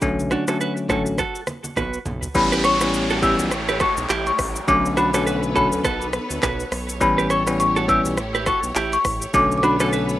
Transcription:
0.01 B1 D3 F#3 A3 C#4, kick, low conga, shaker
0.19 high conga, shaker
0.31 D4 F#4, cross-stick, shaker
0.48 D3 F#3 A3 C#4 F#4 A4, cross-stick, shaker
0.61 F#4 B4, shaker
0.77 shaker
0.89 A1 D3 F#3 A3 C#4 F#4 A4, kick, cross-stick, high conga, low conga, shaker
1.06 shaker
1.18 F#4 A4, kick, cross-stick, shaker
1.35 shaker
1.47 cross-stick, high conga, shaker
1.64 high conga, shaker
1.76 B1 F#4 B4, kick, high tom, high conga, low conga, shaker
1.94 shaker
2.06 B1, mid tom, high conga, low conga, shaker
2.23 floor tom, shaker
2.35 A1 E3 G3 A3 B3 C#4 E4 G4 C#5 B5, kick, downlifter, shaker
2.52 G4 B4, shaker
2.64 A4 C#5 C#6, cross-stick, shaker
2.81 E3 G3 B3 C#4, cross-stick, shaker
2.94 shaker
3.10 F#4 A4, shaker
3.22 E3 G3 B3 C#4 E4 G4 E6, kick, shaker
3.39 B1, shaker
3.51 A1, cross-stick, shaker
3.68 G4 B4, shaker
3.80 F#4 A4 C#6, kick, cross-stick, shaker
3.97 B1, shaker
4.09 A1 E4 G4, clap, shaker
4.27 C#6, shaker
4.39 A1, kick, cross-stick, open hi-hat, shaker
4.56 shaker
4.68 B1 D3 F#3 A3 B3 C#4 A4 B4 C#5 D6, kick, shaker
4.86 shaker
4.97 D4 F#4 B5, cross-stick, shaker
5.14 D3 F#3 A3 C#4 F#4 A4, cross-stick, shaker
5.27 F#4 B4, shaker
5.43 shaker
5.55 D3 F#3 A3 C#4 F#4 A4 B5, kick, shaker
5.72 D2, shaker
5.84 B1 F#4 A4, kick, cross-stick, shaker
6.01 shaker
6.13 cross-stick, shaker
6.30 D2, shaker
6.43 B1 F#4 B4, kick, clap, shaker
6.60 shaker
6.72 B1, cross-stick, open hi-hat, shaker
6.89 shaker
7.00 A1 E3 G3 A3 B3 C#4 E4 G4 B5, kick, shaker
7.18 G4 B4, shaker
7.30 A4 C#5 C#6, cross-stick, shaker
7.47 E3 G3 B3 C#4, cross-stick, shaker
7.60 C#6, shaker
7.76 F#4 A4, shaker
7.88 E3 G3 B3 C#4 E4 G4 E6, kick, shaker
8.05 B1, shaker
8.17 A1, cross-stick, shaker
8.35 G4 B4, shaker
8.46 F#4 A4 C#6, kick, cross-stick, shaker
8.63 B1, shaker
8.75 A1 E4 G4, clap, shaker
8.93 C#6, shaker
9.05 A1, kick, cross-stick, open hi-hat, shaker
9.22 shaker
9.34 B1 D3 F#3 A3 B3 C#4 A4 B4 D6, kick, shaker
9.52 shaker
9.58 D6
9.63 D4 F#4 B5, cross-stick, shaker
9.80 D3 F#3 A3 C#4 F#4 A4, cross-stick, shaker
9.93 F#4 B4, shaker
10.09 shaker

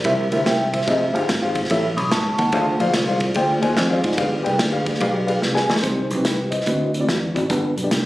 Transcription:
0.04 C2 C3 E4 G4 A#4 C5 E5, kick, ride
0.31 D2 E4 G4 A#4 C5 E5, ride
0.46 C2 E5 G5, snare, ride
0.74 C5 E5, kick, ride
0.81 snare
0.86 F1 F4 G4 G#4 C5 D#5, kick, ride
1.13 G1 F4 G4 G#4 C5 F5, ride
1.29 G#1, snare, ride
1.41 F4 G4 G#4 C5 F5
1.55 kick, ride
1.64 snare
1.70 A1 A2 E4 G4 A4 C#5 E5, kick, ride
1.97 B1 B5 D#6, ride
2.11 C#2 A5 C#6, snare, ride
2.38 D#2 F#5 A5, kick, ride
2.52 D2 D3 F4 G#4 C5 D5 F5, kick, ride
2.80 A#1 F4 G#4 C5 D5 F5, ride
2.94 C2, snare, ride
3.08 F4 G#4 C5 D5 F5
3.20 kick, ride
3.34 D2 F4 G#4 C5 D5 G5, kick, ride
3.61 D#2 F4 G#4 C5 D5 G#5, ride
3.77 F2, snare, ride
3.90 F4 G#4 C5 D5 F5
4.04 G#2, kick, ride
4.12 snare
4.17 G1 G2 G4 G#4 B4 D5 F5, kick, ride
4.43 C2 G4 G#4 B4 D5 G5, ride
4.59 D2, snare, ride
4.71 G4 G#4 B4 D5 F5
4.86 kick, ride
4.94 snare
5.00 B1 G4 G#4 B4 D5 F5, kick, ride
5.27 G4 G#4 B4 D5 F5, ride
5.42 C2, snare
5.54 G4 G#4 B4 D5 G#5, snare
5.70 C#2, snare
5.76 snare
5.81 C2 C3 C4 D#4 G4 C5, kick, closed hi-hat
6.11 B1, closed hi-hat
6.15 C4 D#4 G4 B4
6.25 C2 G4 B4, snare, closed hi-hat
6.51 C5 D#5, kick, closed hi-hat
6.61 snare
6.66 D2 D3 C4 E4 F#4 B4, kick, closed hi-hat
6.94 closed hi-hat
7.00 C4 E4 F#4 D5
7.08 E2, snare, closed hi-hat
7.34 G#1 C4 E4 F#4 D5, kick, closed hi-hat
7.49 G1 G2 B3 D4 G4 B4, kick, closed hi-hat
7.76 B1, closed hi-hat
7.83 B3 D4 G4 D5
7.91 C2, snare, closed hi-hat

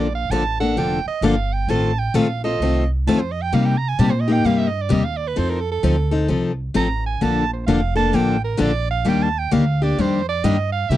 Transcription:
Already playing: A#1 D5
0.15 F5
0.30 A1 D3 F3 A#3 D4 A4 A5
0.60 A#3 D4 A4 F#5
0.76 F1 D3 F3 A#3 D4 A4 G5
1.06 D#5, muted upright bass stroke
1.21 G1 D3 F3 A#3 D4 A4 F5
1.53 G5
1.67 A1 D#3 A3 C4 F4 A4 A5
1.99 G5
2.14 A#1 D#3 A3 C4 F4 A4 F5
2.44 C4 F4 A4 D#5
2.60 C2 D#3 A3 C4 F4 A4
3.07 F2 D#3 A3 C4 F4 A4 A5
3.19 C5
3.31 D#5
3.42 G5
3.53 C3 G3 A#3 D#4 G4 F5
3.65 G5
3.78 A#5
3.88 G#5
3.99 A#2 C3 G3 A#3 D#4 G4 A5
4.10 C5
4.20 D#5
4.28 A#3 D#4 G4
4.32 G5
4.45 G2 C3 G3 A#3 D#4 G4 F5
4.58 E5
4.67 D#5
4.81 D5
4.89 D#2 C3 G3 A#3 D#4 G4 D#5
5.04 F5
5.17 D5
5.28 B4
5.36 F2 F3 C4 D#4 A4 C5
5.50 A#4
5.60 A4
5.71 A4
5.83 D2 F3 C4 D#4 A4
6.11 C4 D#4 A4
6.28 C2 F3 C4 D#4 A4
6.74 A1 F3 C4 D#4 A4 A#5
7.06 G#5
7.21 A#1 D3 F3 A#3 D4 A4 A5
7.53 C5
7.66 F1 D3 F3 A#3 D4 A4 F5
7.96 A#3 D4 A4 A5
8.13 A1 D3 F3 A#3 D4 A4 G5
8.44 A#4
8.57 A#1 D3 F3 A#3 D4 A4 D5
8.90 F5
9.05 D#2 D#3 G3 A#3 D4 G4 G5
9.22 A5
9.38 G5
9.51 D2 D#3 G3 A#3 D4 G4 F5
9.82 A#3 D4 G4 D5
9.98 F2 D#3 G3 A#3 D4 G4 C5
10.29 D5
10.44 G2 D#3 G3 A#3 D4 G4 D#5
10.72 F5
10.89 C3 G3 A#3 E4 G4 E5

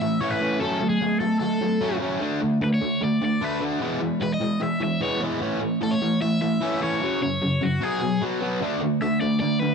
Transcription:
0.01 E3 A3 E5
0.20 E3 A3 C#4 C#5
0.30 B4
0.41 E3 A3 C#4
0.60 F#3 A3 C#4 A4
0.81 F#3 A3
0.89 G#4
1.01 F#3 A3
1.20 F#3 A3 A4
1.39 F#3 A3 A4
1.61 F#3 A3
1.81 F#3 A3 C#4
2.01 F#3 A3 C#4
2.20 D3 A3 D4
2.41 D3 A3
2.61 D3 A3 B4
2.74 C#5
2.81 D3 A3
3.01 D3 A3 D5
3.22 D3 A3 D5
3.41 D3 A3 D4 B4
3.61 D3 A3 D4
3.81 E3 G#3 B3
4.01 E3 G#3
4.21 E3 G#3 B4
4.34 D#5
4.41 E3 G#3
4.60 E3 G#3 E5
4.80 E3 G#3 E5
5.01 E3 G#3 B3 C#5
5.21 E3 G#3 B3
5.41 E3 A3 C#4
5.61 E3 A3
5.81 E3 A3 A4
5.91 C#5
6.02 E3 A3
6.21 E3 A3 E5
6.42 E3 A3 E5
6.61 E3 A3 C#4
6.81 E3 A3 C#4 C#5
7.01 F#2 C#3 F#3
7.21 F#2 C#3 C#5
7.42 F#2 C#3
7.61 F#2 C#3 F#4
7.81 B2 F#3 B3 G#4
8.01 B2 F#3
8.21 B2 F#3 B3
8.41 B2 F#3 B3
8.61 D3 A3 D4
8.81 D3 A3
9.01 D3 A3 E5
9.21 D3 A3 D5
9.40 D3 A3 D5
9.59 D3 A3 B4

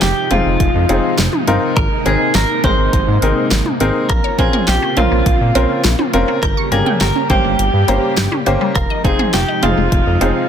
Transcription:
Already playing: C3 F3 G#3 D#4
0.02 F1 G4, snare, closed hi-hat
0.31 F1 C4 D#4 F4 G#4, closed hi-hat, mid tom
0.46 F1
0.60 F1, kick, closed hi-hat
0.75 F2
0.89 F1 C4 D#4 F4 G#4, closed hi-hat, cowbell
1.18 F1, snare, closed hi-hat
1.33 mid tom
1.47 G1 C4 D#4 F4 A#4, closed hi-hat
1.76 G#1 C3 A#3 A#4, kick, closed hi-hat
2.06 G#1 C4 D#4 G#4 A#4, closed hi-hat, cowbell
2.35 G#1 A#4, snare, closed hi-hat
2.64 G#1 C4 D#4 G#4 A#4 C5, kick, closed hi-hat, mid tom, cowbell
2.78 G#1
2.93 G#1, kick, closed hi-hat
3.08 G#2
3.22 G#1 C4 D#4 G#4 A#4, closed hi-hat
3.51 G#1, snare, closed hi-hat
3.66 mid tom
3.80 G#1 C4 D#4 G#4 A#4, closed hi-hat
4.09 A#1 C#3 C4 F4 A#4 F5, kick, closed hi-hat
4.24 C#5
4.38 A#1 C4 C#4 F4 G#4 A#4 C5, kick, closed hi-hat
4.53 A#4, mid tom
4.68 A#1 F4 G4, snare, closed hi-hat
4.82 C#4
4.97 A#1 C4 C#4 F4 A#4, closed hi-hat, mid tom
5.12 A#1 A#3
5.26 A#1, kick, closed hi-hat
5.41 A#2
5.55 A#1 C4 C#4 F4 A#4 C5, closed hi-hat, cowbell
5.84 A#1 F4, snare, closed hi-hat
5.99 C#4, mid tom
6.13 F1 C4 C#4 F4 A#4, closed hi-hat
6.28 A#3
6.43 G1 G3 G4 A#4 G6, kick, closed hi-hat
6.57 C#6
6.72 G1 A#3 C#4 G4 G#4 A#4 A#5, closed hi-hat
6.86 G5, mid tom
7.01 G1 G4 A#4, snare, closed hi-hat
7.15 C#4
7.30 G1 A#3 C#4 G4 C5, kick, closed hi-hat, mid tom
7.44 G1 G3
7.59 G1, closed hi-hat
7.73 G2
7.88 G1 A#3 C#4 G4 C5 A#5, closed hi-hat, cowbell
8.17 G1 G4, snare, closed hi-hat
8.32 C#4, mid tom
8.46 G1 A#3 C#4 G4 C5, closed hi-hat
8.61 G3
8.75 F1 C3 F3 G#3 D#4 A#4 F5, kick, closed hi-hat
8.90 D#5
9.04 F1 C4 D#4 F4 G#4 C5, kick, closed hi-hat
9.19 G#4, mid tom
9.34 F1 F4 G4, snare, closed hi-hat
9.48 D#4
9.63 F1 C4 D#4 F4 G#4, closed hi-hat, mid tom
9.77 F1 G#3
9.92 F1, kick, closed hi-hat
10.06 F2
10.21 F1 C4 D#4 F4 G#4 C5, closed hi-hat, cowbell

